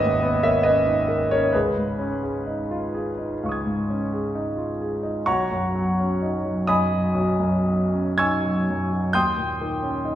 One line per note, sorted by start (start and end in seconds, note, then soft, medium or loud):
0.00 1.56 G#1 medium
0.00 0.04 D#2 medium
0.00 0.35 D#2 soft
0.00 0.23 B3 medium
0.00 0.65 C#4 medium
0.00 0.86 D#4 medium
0.00 0.43 A#4 medium
0.00 0.65 B4 medium
0.00 0.44 C#5 medium
0.00 0.63 D#5 loud
0.00 0.43 E5 medium
0.00 1.56 F#5 loud
0.23 0.56 B3 medium
0.43 0.77 A#4 soft
0.43 0.63 C#5 medium
0.43 0.64 E5 medium
0.63 1.00 C#4 medium
0.63 1.27 B4 medium
0.63 1.30 D#5 medium
0.86 1.22 D#4 soft
1.08 1.31 A#4 medium
1.31 1.54 C#4 soft
1.31 1.53 A#4 medium
1.31 1.54 C#5 medium
1.53 3.39 C#2 medium
1.53 2.22 G#4 medium
1.53 4.33 B4 medium
1.77 2.14 G#2 soft
1.99 2.37 C#4 soft
2.23 2.61 G#4 soft
2.47 2.85 D#4 soft
2.71 3.09 F4 medium
2.94 3.33 G#4 soft
3.18 3.57 D#4 soft
3.43 5.23 C#2 soft
3.43 5.23 F5 soft
3.43 5.24 C#6 soft
3.49 5.26 D#6 soft
3.49 5.27 G#6 soft
3.66 4.03 G#2 soft
3.90 4.25 C#4 soft
4.13 4.48 G#4 soft
4.35 4.70 D#4 soft
4.57 4.93 F4 soft
4.81 5.18 G#4 soft
5.03 5.27 D#4 soft
5.26 7.11 B1 medium
5.26 6.64 C#5 medium
5.26 6.64 F#5 medium
5.26 6.64 A#5 medium
5.26 6.67 C#6 medium
5.51 5.89 F#2 soft
5.76 6.13 F#3 soft
6.00 6.36 C#4 soft
6.22 6.59 D#4 soft
6.45 6.82 F#3 soft
6.67 7.05 F#2 soft
6.67 8.15 D#5 medium
6.67 8.15 G#5 medium
6.67 8.15 B5 medium
6.67 8.18 D#6 medium
6.93 7.30 F#3 soft
7.15 9.09 B1 soft
7.40 7.82 F#2 soft
7.66 8.08 F#3 soft
7.93 8.34 C#4 soft
8.18 8.58 D#4 soft
8.18 9.10 G#5 medium
8.18 9.09 C#6 medium
8.18 9.10 E6 medium
8.18 9.13 G#6 medium
8.45 8.82 F#3 soft
8.70 9.05 F#2 soft
8.93 9.14 F#3 soft
9.13 10.15 D#2 medium
9.13 10.15 G5 medium
9.13 10.15 C6 medium
9.13 10.15 D#6 medium
9.13 10.15 G6 medium
9.38 9.73 A#2 soft
9.61 9.96 D#3 soft
9.83 10.15 C#4 soft
10.05 10.15 D#4 medium